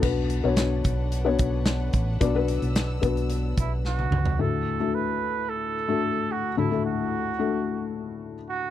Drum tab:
CC |x---------------|----------------|----------------|----------------|
HH |--x-x-x-x-x-x-x-|x-xxx-xxx-x-----|----------------|----------------|
SD |----o-------o---|----o-------o---|----------------|----------------|
T1 |----------------|-------------o--|----------------|----------------|
T2 |----------------|--------------o-|----------------|----------------|
FT |----------------|---------------o|----------------|----------------|
BD |o-----o---o---o-|o-----o---o-----|----------------|----------------|